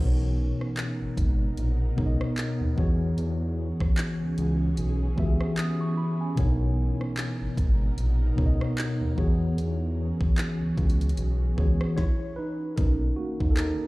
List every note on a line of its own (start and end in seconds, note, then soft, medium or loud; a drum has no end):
0.00 0.48 B1 loud
0.00 1.47 B2 medium
0.00 1.47 B3 medium
0.00 2.75 B3 medium
0.00 1.48 D#4 medium
0.00 2.75 D#4 medium
0.00 1.48 A#4 medium
0.00 2.75 A#4 medium
0.06 1.52 C#5 medium
0.61 cross-stick medium
0.77 clap loud
0.77 closed hi-hat medium
1.01 1.08 G#1 medium
1.17 1.50 G#1 medium
1.17 kick medium
1.17 closed hi-hat medium
1.57 1.90 A#1 loud
1.57 closed hi-hat medium
1.96 2.16 C#2 loud
1.96 2.77 B2 medium
1.96 2.76 B3 medium
1.96 2.78 D#4 medium
1.96 2.78 A#4 medium
1.96 2.06 C#5 medium
1.96 kick medium
2.06 2.82 D#5 medium
2.21 cross-stick loud
2.38 clap loud
2.38 closed hi-hat medium
2.61 2.74 D#2 medium
2.76 3.10 E2 loud
2.76 4.27 E3 medium
2.76 6.34 E3 medium
2.76 4.28 B3 medium
2.76 6.34 C#4 medium
2.76 4.36 F#4 medium
2.76 4.28 F#4 medium
2.76 6.34 G#4 medium
2.76 4.29 G#4 medium
2.76 4.29 C#5 loud
2.76 kick loud
3.18 3.68 E2 loud
3.18 closed hi-hat medium
3.80 kick medium
3.80 cross-stick medium
3.98 clap loud
3.98 closed hi-hat medium
4.21 4.28 C#2 soft
4.38 4.70 C#2 loud
4.38 6.36 E4 medium
4.38 closed hi-hat medium
4.77 5.10 B1 medium
4.77 closed hi-hat medium
5.16 5.36 C#2 medium
5.16 6.29 E3 medium
5.16 6.30 B3 medium
5.16 6.30 F#4 medium
5.16 5.26 G4 medium
5.16 6.31 E5 medium
5.16 kick medium
5.25 6.34 G#4 medium
5.41 cross-stick medium
5.57 5.80 D#6 medium
5.57 clap loud
5.57 closed hi-hat medium
5.81 5.97 C#6 medium
5.97 6.20 B5 medium
6.21 6.59 G#5 medium
6.36 6.88 B1 loud
6.36 7.87 B2 medium
6.36 7.88 B3 medium
6.36 9.15 B3 medium
6.36 6.45 D4 medium
6.36 9.15 D#4 medium
6.36 9.15 A#4 medium
6.36 7.88 A#4 medium
6.36 7.89 C#5 medium
6.36 kick loud
6.36 closed hi-hat medium
6.44 7.91 D#4 medium
7.01 cross-stick medium
7.17 clap loud
7.17 closed hi-hat medium
7.41 7.48 G#1 soft
7.57 7.90 G#1 loud
7.57 kick loud
7.57 closed hi-hat medium
7.98 8.30 A#1 loud
7.98 closed hi-hat medium
8.36 8.56 C#2 loud
8.36 9.17 B2 medium
8.36 9.16 B3 medium
8.36 9.18 D#4 medium
8.36 9.18 A#4 medium
8.36 8.46 C#5 medium
8.36 kick medium
8.46 9.22 D#5 medium
8.61 cross-stick loud
8.78 clap loud
8.78 closed hi-hat medium
9.01 9.14 D#2 medium
9.16 9.50 E2 loud
9.16 10.67 E3 medium
9.16 11.95 E3 medium
9.16 10.68 B3 medium
9.16 11.95 C#4 medium
9.16 11.95 F#4 medium
9.16 10.68 F#4 medium
9.16 11.95 G#4 medium
9.16 10.69 G#4 medium
9.16 10.69 C#5 loud
9.16 kick loud
9.57 10.08 E2 loud
9.57 closed hi-hat medium
10.21 kick medium
10.38 clap loud
10.38 closed hi-hat medium
10.61 10.67 C#2 soft
10.78 11.10 C#2 medium
10.78 kick loud
10.78 closed hi-hat soft
10.90 closed hi-hat medium
11.01 closed hi-hat medium
11.09 closed hi-hat medium
11.17 11.50 B1 medium
11.17 closed hi-hat medium
11.56 11.76 C#2 medium
11.56 11.97 E3 medium
11.56 11.97 B3 medium
11.56 11.98 F#4 medium
11.56 11.98 G#4 medium
11.56 11.95 C#5 medium
11.56 kick medium
11.81 cross-stick loud
11.97 12.35 E4 medium
11.97 12.38 C#5 loud
11.97 kick loud
11.97 snare medium
12.36 12.75 D#4 medium
12.36 12.78 B4 loud
12.76 13.10 B1 loud
12.76 13.87 B2 medium
12.76 13.87 D#3 medium
12.76 13.18 A#3 medium
12.76 13.87 A#3 medium
12.76 13.87 C#4 medium
12.76 13.87 D#4 medium
12.76 12.96 D#4 medium
12.76 12.95 A#4 loud
12.76 kick loud
12.76 closed hi-hat medium
13.16 13.50 A#3 medium
13.16 13.52 F#4 medium
13.40 13.73 D#2 medium
13.40 kick medium
13.51 13.57 A4 medium
13.57 13.77 D#4 medium
13.57 13.75 A#4 loud
13.57 clap loud
13.57 closed hi-hat medium